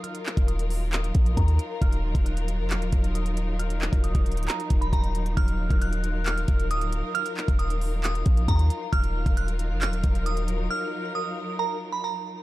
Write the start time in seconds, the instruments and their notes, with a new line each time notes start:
Already playing: string section F#3 D#4 F4 A#4
0.04 synth bell F6, closed hi-hat
0.15 closed hi-hat
0.26 clap
0.37 808-style bass D#1, kick, closed hi-hat
0.48 synth bell D#6, closed hi-hat
0.59 closed hi-hat
0.70 open hi-hat
0.93 synth bell D#6, clap, closed hi-hat
1.04 closed hi-hat
1.15 808-style bass A#1, kick, closed hi-hat
1.26 closed hi-hat
1.37 808-style bass D#2, synth bell A#5, kick, closed hi-hat
1.48 closed hi-hat
1.59 closed hi-hat
1.82 808-style bass D#1, synth bell F6, kick, closed hi-hat
1.92 closed hi-hat
2.15 808-style bass D#1, kick, closed hi-hat
2.26 synth bell F#6, closed hi-hat
2.37 closed hi-hat
2.48 closed hi-hat
2.59 808-style bass F1
2.70 synth bell F6, clap, closed hi-hat
2.76 808-style bass D#1
2.82 closed hi-hat
2.92 808-style bass D#1, kick, closed hi-hat
3.04 closed hi-hat
3.15 synth bell D#6, closed hi-hat
3.26 closed hi-hat
3.37 closed hi-hat
3.59 synth bell F6, closed hi-hat
3.70 closed hi-hat
3.82 clap
3.93 808-style bass D#1, kick, closed hi-hat
4.04 synth bell D#6, closed hi-hat
4.15 808-style bass D#1, kick, closed hi-hat
4.26 closed hi-hat, open hi-hat
4.32 closed hi-hat
4.37 808-style bass D1, closed hi-hat
4.43 closed hi-hat
4.48 synth bell A#5, clap, closed hi-hat
4.60 closed hi-hat
4.70 808-style bass D#1, kick, closed hi-hat
4.81 synth bell B5, closed hi-hat
4.93 808-style bass D#1, synth bell A#5, kick, closed hi-hat
5.04 closed hi-hat
5.15 closed hi-hat
5.26 closed hi-hat
5.37 808-style bass D#1, string section F4 A#4, synth bell F6, kick, closed hi-hat
5.48 closed hi-hat
5.70 808-style bass D#1, kick, closed hi-hat
5.82 synth bell F#6, closed hi-hat
5.93 closed hi-hat
6.04 closed hi-hat
6.26 synth bell F6, clap, closed hi-hat
6.38 closed hi-hat
6.48 808-style bass D#1, kick, closed hi-hat
6.60 closed hi-hat
6.71 808-style bass D1, synth bell D#6, closed hi-hat
6.81 closed hi-hat
6.93 closed hi-hat
7.15 synth bell F6, closed hi-hat
7.26 closed hi-hat
7.37 clap
7.48 808-style bass D#1, kick, closed hi-hat
7.59 synth bell D#6, closed hi-hat
7.70 closed hi-hat
7.81 open hi-hat
8.04 synth bell D#6, clap, closed hi-hat
8.15 closed hi-hat
8.26 808-style bass A#1, kick, closed hi-hat
8.37 closed hi-hat
8.48 808-style bass D#2, synth bell A#5, kick, closed hi-hat
8.59 closed hi-hat
8.70 closed hi-hat
8.93 808-style bass D#1, string section F#3 D#4 A#4, synth bell F6, kick, closed hi-hat
9.04 closed hi-hat
9.26 808-style bass D#1, kick, closed hi-hat
9.37 synth bell F#6, closed hi-hat
9.48 closed hi-hat
9.59 closed hi-hat
9.70 808-style bass F1
9.81 synth bell F6, clap, closed hi-hat
9.87 808-style bass D#1
9.93 closed hi-hat
10.04 808-style bass D#1, kick, closed hi-hat
10.15 closed hi-hat
10.26 synth bell D#6, closed hi-hat
10.37 closed hi-hat
10.48 closed hi-hat
10.71 synth bell F6
11.15 synth bell D#6
11.59 synth bell A#5
11.92 synth bell B5
12.04 synth bell A#5